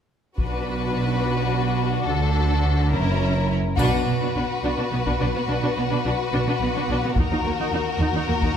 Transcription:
0.38 2.04 B1 soft
0.38 2.04 B2 soft
0.38 2.89 D4 soft
0.38 2.88 F#4 soft
0.38 2.04 B4 soft
0.38 taiko soft
2.06 2.91 D2 soft
2.06 2.91 D3 soft
2.06 2.88 A4 soft
2.92 3.59 F#1 soft
2.92 3.58 F#2 soft
2.92 3.54 C#4 soft
2.92 3.54 E4 soft
2.92 3.55 A#4 soft
3.77 3.92 B1 medium
3.77 3.92 B2 medium
3.77 3.92 D4 medium
3.77 7.11 F#4 medium
3.77 7.12 B4 soft
3.77 taiko soft
3.77 triangle soft
3.93 3.99 B2 soft
3.93 3.99 D4 soft
4.07 4.13 B1 soft
4.07 4.13 B2 soft
4.07 4.13 B3 soft
4.21 4.27 B2 soft
4.21 4.27 D4 soft
4.36 4.42 B1 soft
4.36 4.41 B2 soft
4.36 4.42 D4 soft
4.64 4.69 B1 soft
4.64 4.70 B2 soft
4.64 4.70 D4 soft
4.78 4.83 B2 soft
4.78 4.84 D4 soft
4.91 4.98 B1 soft
4.91 4.97 B2 soft
4.91 4.98 B3 soft
5.06 5.12 B2 soft
5.06 5.12 D4 soft
5.06 taiko soft
5.21 5.26 B1 soft
5.21 5.26 B2 soft
5.21 5.27 D4 soft
5.34 5.40 B2 soft
5.34 5.41 B3 soft
5.48 5.54 B1 soft
5.48 5.54 B2 soft
5.48 5.55 D4 soft
5.62 5.68 B2 soft
5.62 5.69 D4 soft
5.76 5.82 B1 soft
5.76 5.82 B2 soft
5.76 5.83 B3 soft
5.90 5.96 B2 soft
5.90 5.97 D4 soft
6.05 6.11 B1 soft
6.05 6.10 B2 soft
6.05 6.11 D4 soft
6.32 6.38 B1 soft
6.32 6.38 B2 soft
6.32 6.39 D4 soft
6.46 6.52 B2 soft
6.46 6.53 D4 soft
6.60 6.66 B1 soft
6.60 6.67 B2 soft
6.60 6.67 B3 soft
6.75 6.81 B2 soft
6.75 6.81 D4 soft
6.88 6.94 B1 soft
6.88 6.94 B2 soft
6.88 6.96 D4 soft
7.03 7.09 B2 soft
7.03 7.10 B3 soft
7.16 7.22 D#2 soft
7.16 7.24 D#4 soft
7.16 8.57 F#4 soft
7.16 8.57 A#4 soft
7.16 taiko soft
7.31 7.36 D#2 soft
7.31 7.37 D#4 soft
7.44 7.49 D#2 soft
7.44 7.51 D#2 soft
7.44 7.51 A#3 soft
7.59 7.64 D#2 soft
7.59 7.65 D#4 soft
7.72 7.78 D#2 soft
7.72 7.79 D#4 soft
7.99 8.05 D#2 soft
7.99 8.06 D#2 soft
7.99 8.07 D#4 soft
8.13 8.19 D#2 soft
8.13 8.21 D#4 soft
8.26 8.32 D#2 soft
8.26 8.35 D#2 soft
8.26 8.34 A#3 soft
8.41 8.47 D#2 medium
8.41 8.49 D#4 soft
8.41 taiko soft

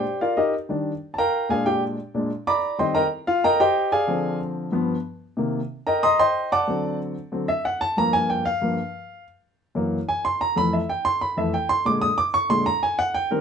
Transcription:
0.00 0.19 G4 medium
0.00 0.19 C5 medium
0.00 0.19 D5 medium
0.00 0.19 G5 medium
0.21 0.37 F4 medium
0.21 0.36 A#4 medium
0.21 0.37 D5 medium
0.21 0.37 F5 medium
0.37 0.53 D#4 medium
0.37 0.53 G4 medium
0.37 0.53 A#4 medium
0.37 0.53 D#5 medium
0.69 0.91 D#3 medium
0.69 0.91 G3 soft
0.69 0.91 D4 medium
1.14 1.16 A5 medium
1.18 1.48 A#4 medium
1.18 1.48 F5 medium
1.18 1.48 G5 medium
1.18 1.48 A#5 loud
1.49 1.96 A#2 medium
1.49 1.96 G#3 soft
1.49 1.96 D4 medium
1.49 1.66 G#4 medium
1.49 1.66 D5 medium
1.49 1.66 F5 medium
1.49 1.66 G#5 medium
1.66 1.82 G4 medium
1.66 1.82 G5 medium
2.14 2.29 A#2 medium
2.14 2.29 G#3 soft
2.14 2.29 D4 medium
2.47 2.77 D5 medium
2.47 2.77 A#5 medium
2.47 2.77 B5 medium
2.47 2.77 D6 loud
2.78 3.00 D#3 medium
2.78 3.01 G3 medium
2.78 3.01 C4 medium
2.78 2.95 C5 medium
2.78 2.93 D#5 medium
2.78 2.94 G5 medium
2.78 2.95 C6 medium
2.95 3.05 A#4 medium
2.95 3.05 D#5 medium
2.95 3.05 G5 medium
2.95 3.04 A#5 loud
3.27 3.43 F4 medium
3.27 3.43 F5 medium
3.44 3.60 A#4 medium
3.44 3.59 D#5 medium
3.44 3.59 G5 medium
3.44 3.60 A#5 loud
3.60 3.90 G4 medium
3.60 3.90 C5 medium
3.60 3.90 D#5 medium
3.60 3.90 G5 loud
3.92 4.37 G#4 medium
3.92 4.37 D5 medium
3.92 4.38 F5 medium
3.92 4.37 G#5 medium
4.07 4.69 D3 medium
4.07 4.70 F3 medium
4.07 4.70 C4 medium
4.72 4.94 G2 medium
4.72 4.94 F3 medium
4.72 4.95 B3 medium
5.37 5.59 C3 medium
5.37 5.59 D#3 soft
5.37 5.59 A#3 medium
5.87 6.02 A#4 medium
5.87 6.02 D#5 medium
5.87 6.03 G5 medium
5.87 6.02 A#5 medium
6.03 6.18 D#5 medium
6.03 6.19 A#5 medium
6.03 6.18 C6 medium
6.03 6.19 D#6 loud
6.19 6.49 C5 medium
6.19 6.49 D#5 medium
6.19 6.49 G5 medium
6.19 6.49 C6 loud
6.52 6.97 D5 medium
6.52 6.97 F#5 medium
6.52 6.97 A5 medium
6.52 6.97 D6 loud
6.67 7.14 D3 medium
6.67 7.14 F#3 medium
6.67 7.14 C4 medium
7.32 7.47 D3 medium
7.32 7.47 F#3 soft
7.32 7.47 C4 medium
7.48 7.64 E5 medium
7.65 7.81 F#5 medium
7.81 7.97 A5 loud
7.97 8.43 G2 medium
7.97 8.44 F3 soft
7.97 8.44 A#3 medium
7.97 8.13 A#5 loud
8.13 8.29 G#5 loud
8.30 8.45 G5 medium
8.45 9.23 F5 loud
8.62 8.76 G2 medium
8.62 8.77 F3 soft
8.62 8.77 A#3 medium
9.75 9.97 F#2 medium
9.75 9.97 E3 soft
9.75 9.97 A#3 medium
10.09 10.24 G#5 medium
10.25 10.40 C6 loud
10.41 10.56 A#5 loud
10.56 10.78 F2 medium
10.56 10.78 E3 soft
10.56 10.79 A3 medium
10.56 10.73 B5 loud
10.73 10.89 E5 medium
10.89 11.05 G5 medium
11.05 11.21 C6 loud
11.21 11.37 B5 medium
11.37 11.52 F2 medium
11.37 11.52 E3 soft
11.37 11.52 A3 medium
11.37 11.53 E5 medium
11.54 11.69 G5 medium
11.69 11.85 C6 loud
11.85 12.07 A#2 medium
11.85 12.07 D3 medium
11.85 12.08 G#3 medium
11.85 12.02 D6 loud
12.02 12.17 D#6 loud
12.18 12.34 D6 loud
12.34 12.50 C#6 loud
12.49 12.64 A#2 medium
12.49 12.64 D3 medium
12.49 12.65 G#3 medium
12.49 12.66 C6 loud
12.66 12.82 A#5 loud
12.83 12.98 G#5 loud
12.99 13.14 F#5 loud
13.14 13.30 G5 loud
13.31 13.41 D#3 medium
13.31 13.41 G3 soft
13.31 13.41 C4 medium
13.31 13.41 A#4 medium

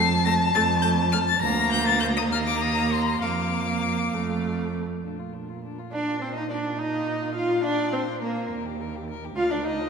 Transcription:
0.00 0.45 F2 loud
0.00 1.41 A5 loud
0.00 0.25 C7 loud
0.25 0.34 A3 medium
0.25 0.33 A#6 loud
0.55 1.32 F2 loud
0.55 0.63 A3 loud
0.55 0.63 A6 loud
0.82 0.92 A3 medium
0.82 0.90 G6 loud
1.12 1.21 A3 medium
1.12 1.18 F6 loud
1.27 1.41 A6 loud
1.41 2.32 D2 loud
1.41 2.27 A#3 loud
1.41 2.29 A#5 loud
1.41 1.71 A#6 loud
1.72 1.86 G6 loud
1.87 1.99 A6 loud
2.00 2.06 G6 loud
2.17 2.23 D#6 medium
2.30 3.21 D#2 medium
2.30 3.20 A#3 loud
2.30 3.20 A#5 loud
2.30 2.38 F6 loud
2.48 2.63 D6 loud
2.61 2.93 D#6 loud
2.92 3.23 C6 loud
3.22 4.12 F2 medium
3.22 4.15 A#3 medium
3.22 4.57 F5 medium
3.22 4.74 D6 medium
4.13 4.82 F2 medium
4.13 4.84 A3 medium
5.03 8.52 A#2 soft
5.03 5.20 D4 soft
5.19 5.35 F4 soft
5.34 5.50 D4 soft
5.49 5.63 F4 soft
5.64 5.80 D4 soft
5.78 5.95 F4 soft
5.92 6.23 D4 medium
5.92 6.08 D4 soft
5.92 6.20 D5 medium
6.07 6.21 F4 soft
6.21 6.36 C4 medium
6.21 6.38 D4 soft
6.21 6.34 C5 medium
6.34 6.42 D#4 medium
6.34 6.52 F4 soft
6.34 6.49 D#5 medium
6.49 6.80 D4 medium
6.49 6.66 D4 soft
6.49 6.57 D5 medium
6.65 6.78 F4 soft
6.77 6.94 D#4 soft
6.77 7.34 D#4 medium
6.77 7.34 D#5 medium
6.93 7.09 F4 soft
7.08 7.23 D#4 medium
7.21 7.36 F4 medium
7.35 7.52 D#4 soft
7.35 7.63 F4 medium
7.35 7.65 F5 medium
7.51 7.65 F4 medium
7.64 7.92 D4 medium
7.64 7.81 D4 medium
7.64 7.94 D5 medium
7.79 7.96 F4 medium
7.92 8.00 C4 medium
7.92 8.11 D4 medium
7.92 8.21 C5 medium
8.09 8.23 F4 soft
8.21 8.50 A#3 medium
8.21 8.39 D4 medium
8.21 8.50 A#4 medium
8.37 8.51 F4 soft
8.50 9.36 D#2 medium
8.50 8.67 A#4 medium
8.66 8.82 G4 soft
8.81 8.97 A#4 medium
8.95 9.09 G4 soft
9.10 9.26 A#4 medium
9.25 9.38 G4 soft
9.36 9.89 D2 medium
9.36 9.50 F4 medium
9.36 9.54 D5 medium
9.36 9.53 F5 medium
9.51 9.66 D4 medium
9.51 9.68 A#4 soft
9.51 9.65 D5 medium
9.64 9.89 D#4 medium
9.64 9.82 D5 soft
9.64 9.89 D#5 medium
9.81 9.89 A#4 soft

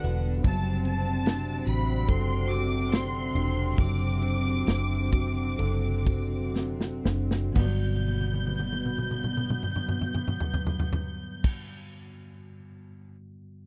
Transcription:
0.00 0.42 E1 medium
0.00 0.41 D3 medium
0.00 0.40 G3 medium
0.00 0.41 G3 medium
0.00 0.41 B3 medium
0.00 0.41 D4 medium
0.00 0.42 D4 medium
0.00 0.41 F#4 medium
0.00 0.04 B4 medium
0.00 0.43 B4 medium
0.00 0.47 D5 medium
0.00 0.25 F#5 medium
0.04 ride medium
0.44 1.63 F#1 loud
0.44 7.52 C3 medium
0.44 7.52 D3 medium
0.44 3.74 F#3 medium
0.44 7.52 C4 medium
0.44 7.52 C4 loud
0.44 7.52 F#4 medium
0.44 0.83 A5 loud
0.44 kick loud
0.44 ride medium
0.85 2.46 C4 medium
0.85 1.63 A5 loud
0.85 ride medium
1.26 2.88 D4 medium
1.26 snare loud
1.26 ride medium
1.67 2.05 A1 medium
1.67 2.48 F#4 medium
1.67 2.08 B5 medium
1.67 ride medium
2.08 3.31 F#1 medium
2.08 3.74 A4 medium
2.08 2.50 C6 medium
2.08 kick medium
2.08 ride medium
2.50 4.18 F#4 medium
2.50 2.93 D6 loud
2.50 ride medium
2.92 4.21 C4 medium
2.92 3.79 C6 loud
2.92 snare loud
2.92 ride medium
3.35 3.75 E1 medium
3.35 4.66 D4 medium
3.35 ride medium
3.78 4.63 F#1 loud
3.78 7.52 F#3 medium
3.78 6.52 D6 loud
3.78 kick loud
3.78 ride medium
4.22 6.03 C4 medium
4.22 ride medium
4.67 5.55 F#1 medium
4.67 6.51 D4 medium
4.67 snare loud
4.67 ride medium
5.12 6.05 F#4 medium
5.12 kick loud
5.12 ride medium
5.59 7.01 F#1 medium
5.59 7.52 A4 medium
5.59 ride medium
6.06 7.52 F#4 medium
6.06 kick medium
6.06 ride medium
6.55 7.53 C4 medium
6.55 snare medium
6.81 snare medium
7.05 7.53 F#1 medium
7.05 7.54 D4 medium
7.05 snare medium
7.31 snare medium
7.50 11.57 G2 medium
7.50 11.59 D3 medium
7.54 11.61 G1 medium
7.54 11.61 G2 medium
7.54 11.60 B2 medium
7.54 11.61 F#3 medium
7.54 11.61 G3 medium
7.54 11.60 B3 soft
7.54 11.60 B3 medium
7.54 11.61 B3 loud
7.54 11.60 F#4 medium
7.54 11.61 G6 medium
7.54 kick loud
7.54 crash medium
7.59 11.63 F#4 medium
7.59 11.62 D5 soft
8.08 high tom soft
8.21 high tom soft
8.34 high tom soft
8.47 high tom medium
8.60 high tom medium
8.72 high tom medium
8.86 mid tom medium
8.98 mid tom medium
9.11 mid tom medium
9.24 mid tom medium
9.37 mid tom medium
9.50 mid tom medium
9.63 mid tom medium
9.76 mid tom medium
9.89 mid tom medium
10.01 mid tom medium
10.14 mid tom medium
10.28 mid tom medium
10.40 floor tom medium
10.54 floor tom medium
10.67 floor tom medium
10.80 floor tom medium
10.93 floor tom loud
11.44 kick loud
11.44 crash loud

